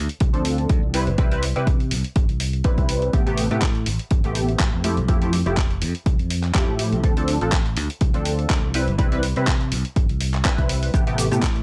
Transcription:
0.09 closed hi-hat
0.20 fingered electric bass C2, kick, closed hi-hat
0.33 fingered electric bass D2, analog polysynth F3 C4 D4 A4, closed hi-hat
0.45 open hi-hat
0.58 closed hi-hat
0.69 kick, closed hi-hat
0.83 fingered electric bass C2
0.94 analog polysynth G3 C4 E4 B4, open hi-hat
1.07 fingered electric bass G1, closed hi-hat
1.18 fingered electric bass C2, analog polysynth G3 C4 E4 B4, kick, closed hi-hat
1.31 analog polysynth G3 C4 E4 B4, closed hi-hat
1.43 open hi-hat
1.56 fingered electric bass C3, analog polysynth G3 C4 E4 B4, closed hi-hat
1.67 kick, closed hi-hat
1.80 closed hi-hat
1.91 fingered electric bass C2, open hi-hat
2.04 closed hi-hat
2.16 fingered electric bass G1, kick, closed hi-hat
2.29 fingered electric bass C2, closed hi-hat
2.40 open hi-hat
2.53 closed hi-hat
2.64 analog polysynth G3 C4 E4 B4, kick, closed hi-hat
2.78 fingered electric bass C2, kick, closed hi-hat
2.89 open hi-hat
3.02 closed hi-hat
3.13 analog polysynth C3 A3 B3 G4, kick, closed hi-hat
3.26 analog polysynth C3 A3 B3 G4, closed hi-hat
3.38 open hi-hat
3.51 fingered electric bass A2, analog polysynth C3 A3 B3 G4, closed hi-hat
3.62 kick, clap, closed hi-hat
3.75 closed hi-hat
3.86 fingered electric bass A1, open hi-hat
3.99 closed hi-hat
4.11 fingered electric bass G1, kick, closed hi-hat
4.24 fingered electric bass A1, analog polysynth C3 A3 B3 G4, closed hi-hat
4.35 open hi-hat
4.49 closed hi-hat
4.60 kick, clap, closed hi-hat
4.73 fingered electric bass F2
4.84 analog polysynth F3 A3 E4 G4, open hi-hat
4.97 fingered electric bass C2, closed hi-hat
5.08 fingered electric bass F2, analog polysynth F3 A3 E4 G4, kick, closed hi-hat
5.22 analog polysynth F3 A3 E4 G4, closed hi-hat
5.33 open hi-hat
5.46 fingered electric bass F1, analog polysynth F3 A3 E4 G4, closed hi-hat
5.57 kick, clap, closed hi-hat
5.71 closed hi-hat
5.82 fingered electric bass F2, open hi-hat
5.95 closed hi-hat
6.06 fingered electric bass C2, kick, closed hi-hat
6.19 fingered electric bass F2, closed hi-hat
6.30 open hi-hat
6.44 clap, closed hi-hat
6.54 analog polysynth F3 A3 E4 G4, kick, clap, closed hi-hat
6.68 fingered electric bass A2
6.79 open hi-hat
6.93 fingered electric bass C2, closed hi-hat
7.03 fingered electric bass D2, analog polysynth F3 C4 D4 A4, kick, closed hi-hat
7.17 analog polysynth F3 C4 D4 A4, closed hi-hat
7.28 open hi-hat
7.41 fingered electric bass A1, analog polysynth F3 C4 D4 A4, closed hi-hat
7.52 kick, clap, closed hi-hat
7.66 closed hi-hat
7.77 fingered electric bass D2, open hi-hat
7.90 closed hi-hat
8.01 fingered electric bass C2, kick, closed hi-hat
8.14 fingered electric bass D2, analog polysynth F3 C4 D4 A4, closed hi-hat
8.25 open hi-hat
8.39 closed hi-hat
8.50 fingered electric bass D2, kick, clap, closed hi-hat
8.63 fingered electric bass C2
8.74 analog polysynth G3 C4 E4 B4, open hi-hat
8.87 fingered electric bass G1, closed hi-hat
8.98 fingered electric bass C2, analog polysynth G3 C4 E4 B4, kick, closed hi-hat
9.12 analog polysynth G3 C4 E4 B4, closed hi-hat
9.23 open hi-hat
9.36 fingered electric bass C3, analog polysynth G3 C4 E4 B4, closed hi-hat
9.47 kick, clap, closed hi-hat
9.61 closed hi-hat
9.72 fingered electric bass C2, open hi-hat
9.85 closed hi-hat
9.96 fingered electric bass G1, kick, closed hi-hat
10.09 fingered electric bass C2, closed hi-hat
10.21 open hi-hat
10.34 clap, closed hi-hat
10.45 analog polysynth G3 C4 E4 B4, kick, clap, closed hi-hat
10.58 fingered electric bass C2, kick, closed hi-hat
10.69 open hi-hat
10.83 open hi-hat
10.94 analog polysynth C3 A3 B3 G4, kick, closed hi-hat, shaker
11.07 analog polysynth C3 A3 B3 G4, closed hi-hat
11.18 open hi-hat, shaker
11.31 fingered electric bass A2, analog polysynth C3 A3 B3 G4, closed hi-hat, shaker
11.42 kick, clap, closed hi-hat, shaker
11.56 closed hi-hat

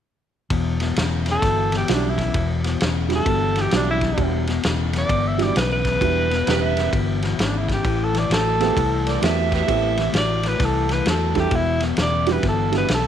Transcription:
0.50 fingered electric bass E1, clean electric guitar E2 B2, kick, ride
0.80 clean electric guitar E2 B2, snare, ride
0.96 fingered electric bass E1, clean electric guitar E2 C#3, snare, ride
1.26 clean electric guitar E2 C#3, snare, ride
1.32 tenor saxophone A4
1.42 fingered electric bass G1, clean electric guitar E2 B2, kick, snare, ride
1.72 clean electric guitar E2 B2, snare, ride
1.77 tenor saxophone G4
1.88 fingered electric bass B1, clean electric guitar E2 C#3, upright piano G3 D4 E4 F#4, snare, ride
1.93 tenor saxophone D4
2.09 tenor saxophone E4
2.18 clean electric guitar E2 C#3, kick, snare, ride
2.34 fingered electric bass E1, clean electric guitar E2 B2, kick, ride
2.64 clean electric guitar E2 B2, snare, ride
2.80 fingered electric bass E1, clean electric guitar E2 C#3, snare, ride
3.09 clean electric guitar E2 C#3, upright piano G3 D4 E4 F#4, snare, ride
3.16 tenor saxophone A4
3.26 fingered electric bass G1, clean electric guitar E2 B2, kick, ride
3.56 clean electric guitar E2 B2, snare, ride
3.61 tenor saxophone G4
3.71 fingered electric bass B1, clean electric guitar E2 C#3, upright piano G3 D4 E4 F#4, snare, ride
3.76 tenor saxophone D4
3.91 tenor saxophone E4
4.01 clean electric guitar E2 C#3, kick, snare, ride
4.17 fingered electric bass E1, clean electric guitar E2 B2, upright piano G3 D4 E4 F#4, kick, ride
4.47 clean electric guitar E2 B2, snare, ride
4.63 fingered electric bass E1, clean electric guitar E2 C#3, snare, ride
4.93 clean electric guitar E2 C#3, snare, ride
4.98 tenor saxophone D5
5.09 fingered electric bass G1, clean electric guitar E2 B2, kick, ride
5.28 tenor saxophone E5
5.38 clean electric guitar E2 B2, upright piano G3 D4 E4 F#4, snare, ride
5.43 tenor saxophone D5
5.56 fingered electric bass B1, clean electric guitar E2 C#3, tenor saxophone B4, snare, ride
5.73 tenor saxophone B4
5.85 clean electric guitar E2 C#3, kick, snare, ride
6.01 fingered electric bass E1, clean electric guitar E2 B2, upright piano G3 D4 E4 F#4, kick, ride
6.30 clean electric guitar E2 B2, snare, ride
6.46 fingered electric bass E1, clean electric guitar E2 C#3, upright piano G3 D4 E4 G4, harmonica B4, snare, ride
6.63 harmonica E5
6.76 clean electric guitar E2 C#3, snare, ride
6.93 fingered electric bass G1, clean electric guitar E2 B2, kick, ride
7.22 clean electric guitar E2 B2, snare, ride
7.38 fingered electric bass G#1, clean electric guitar E2 C#3, tenor saxophone D4, snare, ride
7.58 tenor saxophone E4
7.68 clean electric guitar E2 C#3, kick, snare, ride
7.73 tenor saxophone G4
7.83 fingered electric bass A1, clean electric guitar A2 E3, kick, ride
8.04 tenor saxophone A4
8.13 clean electric guitar A2 E3, snare, ride
8.19 tenor saxophone D5
8.30 fingered electric bass A1, clean electric guitar A2 F#3, snare, ride
8.34 tenor saxophone A4
8.60 clean electric guitar A2 F#3, upright piano A3 B3 C4 G4, snare, ride
8.76 fingered electric bass C2, clean electric guitar A2 E3, kick, ride
9.06 clean electric guitar A2 E3, harmonica D5, snare, ride
9.21 fingered electric bass E2, clean electric guitar A2 F#3, upright piano A3 B3 C4 G4, harmonica E5, snare, ride
9.52 clean electric guitar A2 F#3, harmonica G4 B4 E5, kick, snare, ride
9.67 fingered electric bass A1, clean electric guitar A2 E3, upright piano A3 B3 C4 G4, kick, ride
9.97 clean electric guitar A2 E3, snare, ride
10.13 fingered electric bass A1, clean electric guitar A2 F#3, snare, ride
10.18 tenor saxophone D5
10.43 clean electric guitar A2 F#3, snare, ride
10.48 tenor saxophone B4
10.59 fingered electric bass C2, clean electric guitar A2 E3, kick, snare, ride
10.65 tenor saxophone A4
10.89 clean electric guitar A2 E3, snare, ride
10.93 tenor saxophone B4
11.05 fingered electric bass E2, clean electric guitar A2 F#3, tenor saxophone A4, snare, ride
11.35 clean electric guitar A2 F#3, upright piano G3 D4 E4 A4, kick, snare, ride
11.40 tenor saxophone G4
11.51 fingered electric bass E1, clean electric guitar E2 B2, kick, ride
11.55 tenor saxophone E4
11.80 clean electric guitar E2 B2, snare, ride
11.97 fingered electric bass E1, clean electric guitar E2 C#3, snare, ride
12.02 tenor saxophone D5
12.26 clean electric guitar E2 C#3, upright piano G3 D4 E4 F#4, snare, ride
12.32 tenor saxophone B4
12.43 fingered electric bass G1, clean electric guitar E2 B2, kick, snare, ride
12.49 tenor saxophone A4
12.72 clean electric guitar E2 B2, upright piano G3 D4 E4 F#4, snare, ride
12.78 tenor saxophone B4
12.88 fingered electric bass B1, clean electric guitar E2 C#3, snare, ride
12.94 tenor saxophone A4

